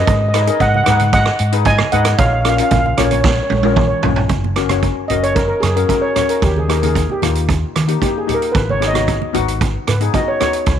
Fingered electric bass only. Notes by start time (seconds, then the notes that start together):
0.08 G#2
0.60 G#2
0.87 G#2
1.40 G#2
1.93 G#2
2.19 A#1
2.72 A#1
2.98 A#1
3.51 A#1
4.04 A#1
4.30 F#1
5.10 F#1
5.63 F#2
6.43 D#2
7.22 D#2
7.76 D#3
8.55 G#1
9.35 G#1
9.88 G#2
10.67 C#2